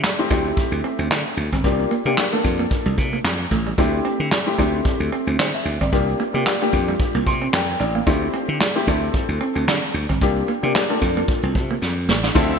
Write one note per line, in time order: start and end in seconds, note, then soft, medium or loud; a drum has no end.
0.04 snare loud
0.04 clap medium
0.19 0.26 A3 medium
0.19 0.27 C4 medium
0.19 0.27 E4 medium
0.19 0.27 G4 medium
0.30 0.51 D2 medium
0.30 1.03 A3 medium
0.30 1.04 C4 medium
0.30 0.40 D4 medium
0.30 1.04 E4 medium
0.30 1.04 G4 medium
0.30 kick medium
0.30 closed hi-hat medium
0.45 closed hi-hat medium
0.57 muted clean electric guitar stroke soft
0.57 kick loud
0.57 closed hi-hat loud
0.72 0.81 D2 medium
0.84 0.94 C4 medium
0.84 closed hi-hat medium
0.99 1.08 D2 medium
0.99 1.06 C4 medium
0.99 closed hi-hat medium
1.11 1.22 D3 medium
1.11 1.20 D4 medium
1.11 snare loud
1.11 clap loud
1.37 1.49 D2 loud
1.37 muted clean electric guitar stroke soft
1.37 closed hi-hat medium
1.52 1.61 G1 medium
1.52 1.60 C4 medium
1.52 kick medium
1.52 closed hi-hat medium
1.64 1.85 C2 loud
1.64 1.91 A#3 medium
1.64 1.91 D4 medium
1.64 1.91 F4 medium
1.64 1.92 G4 medium
1.64 kick loud
1.64 closed hi-hat medium
1.79 muted clean electric guitar stroke soft
1.79 closed hi-hat soft
1.91 2.01 A#3 medium
1.91 closed hi-hat medium
2.05 2.15 C3 medium
2.05 2.23 A#3 medium
2.05 2.14 A#3 medium
2.05 2.23 D4 medium
2.05 2.23 F4 medium
2.05 2.23 G4 medium
2.05 closed hi-hat soft
2.18 snare loud
2.18 clap medium
2.32 2.40 A3 medium
2.32 3.04 A#3 medium
2.32 3.04 D4 medium
2.32 3.04 F4 medium
2.32 3.04 A4 medium
2.44 2.65 F2 medium
2.44 muted clean electric guitar stroke soft
2.44 kick medium
2.44 open hi-hat medium
2.59 2.67 A#3 medium
2.59 closed hi-hat soft
2.71 kick loud
2.71 closed hi-hat medium
2.86 2.95 C2 medium
2.86 2.93 G3 medium
2.86 closed hi-hat soft
2.98 3.18 C3 medium
2.98 muted clean electric guitar stroke soft
2.98 kick medium
2.98 closed hi-hat medium
3.13 3.21 A#3 medium
3.13 closed hi-hat medium
3.24 3.45 F2 medium
3.24 snare loud
3.24 clap loud
3.40 closed hi-hat soft
3.51 3.72 A1 medium
3.51 3.61 A3 medium
3.51 kick medium
3.51 open hi-hat medium
3.67 3.74 G3 medium
3.67 closed hi-hat medium
3.78 3.99 D2 loud
3.78 4.24 A3 medium
3.78 4.25 C4 medium
3.78 3.88 D4 medium
3.78 4.25 E4 medium
3.78 4.25 G4 medium
3.78 kick loud
3.78 closed hi-hat medium
3.93 muted clean electric guitar stroke soft
4.04 4.14 C4 medium
4.04 closed hi-hat medium
4.20 4.29 D3 loud
4.20 closed hi-hat soft
4.32 snare loud
4.32 clap medium
4.46 4.54 A3 medium
4.46 4.55 C4 medium
4.46 4.55 E4 medium
4.46 4.55 G4 medium
4.58 4.79 D2 medium
4.58 5.32 A3 medium
4.58 5.32 C4 medium
4.58 4.68 D4 medium
4.58 5.32 E4 medium
4.58 5.32 G4 medium
4.58 kick medium
4.58 closed hi-hat medium
4.74 closed hi-hat medium
4.85 muted clean electric guitar stroke soft
4.85 kick loud
4.85 closed hi-hat medium
5.00 5.09 D2 medium
5.12 5.22 C4 medium
5.12 closed hi-hat medium
5.27 5.36 D2 medium
5.27 5.35 C4 medium
5.27 closed hi-hat medium
5.39 5.50 D3 loud
5.39 5.49 D4 medium
5.39 5.53 C5 medium
5.39 snare loud
5.39 clap loud
5.54 5.80 E5 medium
5.65 5.77 D2 loud
5.65 muted clean electric guitar stroke soft
5.65 closed hi-hat medium
5.81 5.90 G1 medium
5.81 5.89 C4 medium
5.81 6.06 D5 medium
5.81 kick medium
5.81 closed hi-hat soft
5.92 6.13 C2 medium
5.92 6.20 A#3 medium
5.92 6.20 D4 medium
5.92 6.20 F4 medium
5.92 6.20 G4 medium
5.92 kick loud
5.92 closed hi-hat medium
6.08 muted clean electric guitar stroke soft
6.20 6.29 A#3 medium
6.20 closed hi-hat medium
6.33 6.43 C3 medium
6.33 6.51 A#3 medium
6.33 6.42 A#3 medium
6.33 6.51 D4 medium
6.33 6.51 F4 medium
6.33 6.51 G4 medium
6.33 closed hi-hat soft
6.46 snare loud
6.46 clap medium
6.61 6.69 A3 medium
6.61 7.33 A#3 medium
6.61 7.33 D4 medium
6.61 7.33 F4 medium
6.61 7.33 G4 medium
6.73 6.94 F2 medium
6.73 muted clean electric guitar stroke soft
6.73 kick medium
6.73 closed hi-hat medium
6.88 6.96 G3 medium
6.88 closed hi-hat medium
6.99 kick loud
6.99 closed hi-hat medium
7.15 7.24 C2 medium
7.15 7.22 A#3 medium
7.26 7.47 C3 medium
7.26 7.52 C6 medium
7.26 muted clean electric guitar stroke soft
7.26 kick medium
7.26 closed hi-hat medium
7.41 7.49 C4 medium
7.41 closed hi-hat medium
7.53 7.74 F2 medium
7.53 7.79 A#4 medium
7.53 8.03 G5 medium
7.53 muted clean electric guitar stroke soft
7.53 snare loud
7.53 clap loud
7.68 closed hi-hat soft
7.80 8.01 A1 medium
7.80 7.89 D4 medium
7.80 7.95 D5 medium
7.80 closed hi-hat medium
7.95 8.03 A#3 medium
7.95 8.21 F5 medium
7.95 closed hi-hat medium
8.07 8.27 D2 loud
8.07 8.53 A3 medium
8.07 8.53 C4 medium
8.07 8.16 D4 medium
8.07 8.53 E4 medium
8.07 8.53 G4 medium
8.07 kick loud
8.07 closed hi-hat medium
8.22 muted clean electric guitar stroke soft
8.34 8.43 C4 medium
8.34 closed hi-hat medium
8.48 8.58 D3 medium
8.48 closed hi-hat soft
8.61 snare loud
8.61 clap loud
8.75 8.83 A3 medium
8.75 8.83 C4 medium
8.75 8.84 E4 medium
8.75 8.84 G4 loud
8.87 9.08 D2 medium
8.87 9.61 A3 medium
8.87 9.61 C4 medium
8.87 8.97 D4 medium
8.87 9.61 E4 medium
8.87 9.61 A4 medium
8.87 kick medium
8.87 closed hi-hat medium
9.02 closed hi-hat medium
9.14 muted clean electric guitar stroke soft
9.14 kick loud
9.14 closed hi-hat medium
9.29 9.38 D2 medium
9.41 9.50 C4 medium
9.41 closed hi-hat medium
9.55 9.65 D2 medium
9.55 9.63 C4 medium
9.55 closed hi-hat medium
9.67 9.79 D3 loud
9.67 9.77 D4 medium
9.67 snare loud
9.67 clap medium
9.94 10.06 D2 medium
9.94 muted clean electric guitar stroke soft
9.94 closed hi-hat medium
10.09 10.19 G1 medium
10.09 10.17 C4 medium
10.09 kick medium
10.09 closed hi-hat medium
10.21 10.42 C2 loud
10.21 10.49 A#3 medium
10.21 10.49 D4 medium
10.21 10.49 F4 medium
10.21 10.49 G4 medium
10.21 kick loud
10.21 closed hi-hat medium
10.37 muted clean electric guitar stroke soft
10.37 closed hi-hat soft
10.48 10.58 A#3 medium
10.48 closed hi-hat medium
10.63 10.72 C3 medium
10.63 10.80 A#3 medium
10.63 10.71 A#3 medium
10.63 10.80 D4 medium
10.63 10.80 F4 medium
10.63 10.80 G4 medium
10.63 closed hi-hat soft
10.75 snare loud
10.75 clap medium
10.90 10.98 A3 medium
10.90 11.61 A#3 medium
10.90 11.61 D4 medium
10.90 11.61 F4 medium
10.90 11.62 A4 medium
11.01 11.22 F2 medium
11.01 muted clean electric guitar stroke soft
11.01 kick medium
11.01 open hi-hat medium
11.17 11.24 A#3 medium
11.17 closed hi-hat soft
11.28 kick loud
11.28 closed hi-hat medium
11.43 11.57 C2 medium
11.43 11.51 C4 medium
11.43 closed hi-hat soft
11.55 11.76 C3 loud
11.55 muted clean electric guitar stroke soft
11.55 kick medium
11.55 closed hi-hat medium
11.70 11.78 A#3 medium
11.70 closed hi-hat medium
11.82 12.10 F2 medium
11.82 muted clean electric guitar stroke soft
11.82 snare medium
12.09 12.29 A1 medium
12.09 12.18 A#3 medium
12.09 snare medium
12.24 12.31 D4 medium
12.24 snare medium
12.35 12.56 D2 loud
12.35 12.59 D3 medium
12.35 12.59 F3 medium
12.35 12.59 C4 medium
12.35 12.45 D4 medium
12.35 12.59 E4 medium
12.35 12.59 F4 medium
12.35 12.59 A4 loud
12.35 12.59 E5 loud
12.35 kick loud
12.35 crash medium
12.50 muted clean electric guitar stroke soft
12.50 closed hi-hat medium